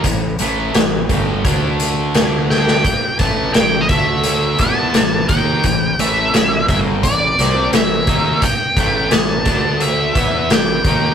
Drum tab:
HH |x-x-x-x-x-x-x---|x-x-x-x-x-x-x-x-|x-x-x-x-x-x-x-x-|x-x-x-x-x-x-x-x-|
SD |----o-------o-oo|----o-----o-o---|----o-----o-o---|----o-------o---|
BD |o-----o-o-------|o-o---o---o---o-|o-----o-o-----o-|o-o---o---o---o-|